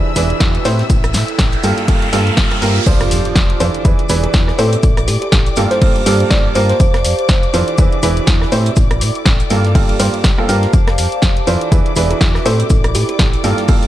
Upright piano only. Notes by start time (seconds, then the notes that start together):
0.16 E3 D4 E4 G#4 B4
0.65 A2 C4 E4 G4 C5
1.63 G2 A#3 F4 G4 A4
1.88 G2 A#3 F4 G4 A4
2.13 G2 A#3 F4 G4 A4
2.62 A#3 F4 G4 A#4
2.87 F3 D4 F4 A4 C5
3.60 E3 D4 F4 A4 C5
3.85 E3 D4 E4 G#4 B4
4.09 E3 D4 E4 G#4 B4
4.59 A2 C4 E4 G4 C5
5.57 G2 A#3 F4 G4 A4
5.82 G2 A#3 F4 G4 A4
6.06 G2 A#3 F4 G4 A4
6.55 A#3 F4 G4 A#4
7.54 E3 D4 F4 A4 C5
7.78 E3 D4 E4 G#4 B4
8.03 E3 D4 E4 G#4 B4
8.52 A2 C4 E4 G4 C5
9.50 G2 A#3 F4 G4 A4
9.75 G2 A#3 F4 G4 A4
9.99 G2 A#3 F4 G4 C5
10.38 G2 A#3 F4 G4 A4
10.49 A#3 F4 G4 A#4
11.47 E3 D4 F4 A4 C5
11.72 E3 D4 E4 G#4 B4
11.96 E3 D4 E4 G#4 B4
12.46 A2 C4 E4 G4 C5
13.44 G2 A#3 F4 G4 A4
13.69 G2 A#3 F4 G4 A4